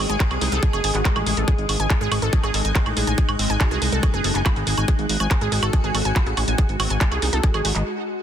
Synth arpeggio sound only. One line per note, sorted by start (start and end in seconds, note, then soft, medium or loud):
0.10 0.13 G#5 loud
0.20 0.28 G#4 medium
0.31 0.36 G#4 medium
0.41 0.50 G#4 medium
0.52 0.55 A4 loud
0.63 0.66 G#4 medium
0.73 0.81 G#4 loud
0.84 0.89 G#5 medium
0.95 1.00 F#4 medium
1.16 1.21 G#4 medium
1.26 1.35 G#4 medium
1.37 1.40 A4 medium
1.48 1.53 G#4 medium
1.80 1.83 G#5 loud
1.90 1.99 G#4 medium
2.01 2.06 G#4 loud
2.12 2.20 G#4 medium
2.22 2.26 A4 loud
2.33 2.36 G#4 medium
2.44 2.52 G#4 loud
2.54 2.60 A4 medium
2.65 2.68 G#5 loud
2.75 2.84 G#4 medium
2.86 2.92 G#4 medium
2.97 3.05 G#4 medium
3.07 3.13 G#5 loud
3.18 3.23 G#4 medium
3.50 3.53 G#5 loud
3.61 3.69 G#4 medium
3.71 3.77 G#4 loud
3.82 3.90 G#4 medium
3.92 3.96 A4 loud
4.03 4.06 G#4 medium
4.14 4.22 G#4 loud
4.24 4.30 A4 medium
4.35 4.38 G#5 loud
4.46 4.54 G#4 medium
4.56 4.62 G#4 medium
4.67 4.75 G#4 medium
4.78 4.83 G#5 loud
4.88 4.94 G#4 medium
5.20 5.23 G#5 loud
5.31 5.39 G#4 medium
5.41 5.47 G#4 loud
5.52 5.60 G#4 medium
5.63 5.66 A4 loud
5.73 5.77 G#4 medium
5.84 5.92 G#4 loud
5.95 6.00 A4 medium
6.05 6.08 G#5 loud
6.16 6.24 G#4 medium
6.26 6.32 G#4 medium
6.37 6.45 G#4 medium
6.48 6.53 G#5 loud
6.58 6.64 G#4 medium
6.90 6.94 G#5 loud
7.01 7.09 G#4 medium
7.12 7.17 G#4 loud
7.22 7.30 G#4 medium
7.33 7.36 A4 loud
7.43 7.47 G#4 medium
7.54 7.62 G#4 loud
7.65 7.70 F#4 medium
7.75 7.79 D#5 medium